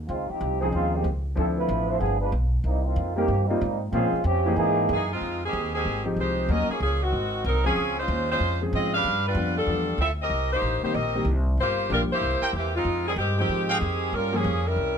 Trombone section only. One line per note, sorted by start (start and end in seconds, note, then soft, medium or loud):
0.08 0.28 G#3 medium
0.08 0.28 C4 medium
0.08 0.28 D#4 medium
0.08 0.28 F4 medium
0.29 0.60 F3 medium
0.29 0.59 C4 medium
0.29 0.60 D#4 medium
0.29 0.62 G4 medium
0.61 0.67 F3 medium
0.61 0.66 C4 medium
0.61 0.67 D#4 medium
0.61 0.67 G#4 medium
0.74 0.93 G#3 medium
0.74 0.93 C4 medium
0.74 0.93 D#4 medium
0.74 0.93 F4 medium
0.95 1.06 D#3 medium
0.95 1.06 G#3 medium
0.95 1.06 C4 medium
0.95 1.06 G4 medium
1.38 1.47 F3 medium
1.38 1.48 C4 medium
1.38 1.47 E4 medium
1.38 1.47 A4 medium
1.57 1.87 A3 medium
1.57 1.86 E4 medium
1.57 1.86 F4 medium
1.57 1.87 B4 medium
1.87 2.01 A3 medium
1.87 2.00 E4 medium
1.87 2.00 F4 medium
1.87 2.00 C5 medium
1.99 2.19 F3 medium
1.99 2.19 B3 medium
1.99 2.19 D4 medium
1.99 2.19 G#4 medium
2.20 2.32 G#3 medium
2.20 2.32 D4 medium
2.20 2.31 F4 medium
2.20 2.32 B4 medium
2.65 2.84 G3 medium
2.65 2.84 A#3 medium
2.65 2.84 C4 medium
2.65 2.84 D#4 medium
2.85 3.15 A#3 medium
2.85 3.15 C4 medium
2.85 3.17 D#4 medium
2.85 3.17 F4 medium
3.16 3.46 D#3 medium
3.16 3.46 A#3 medium
3.16 3.46 C4 medium
3.16 3.47 G4 medium
3.47 3.80 G3 medium
3.47 3.80 A#3 medium
3.47 3.81 C4 medium
3.47 3.80 D#4 medium
3.92 4.22 G#3 medium
3.92 4.22 C4 medium
3.92 4.22 C#4 medium
3.92 4.22 F4 medium
4.25 4.55 F3 medium
4.25 4.55 C4 medium
4.25 4.55 C#4 medium
4.25 4.55 G4 loud
4.57 5.06 E3 medium
4.57 5.06 A#3 medium
4.57 5.06 D#4 medium
4.57 5.06 G#4 loud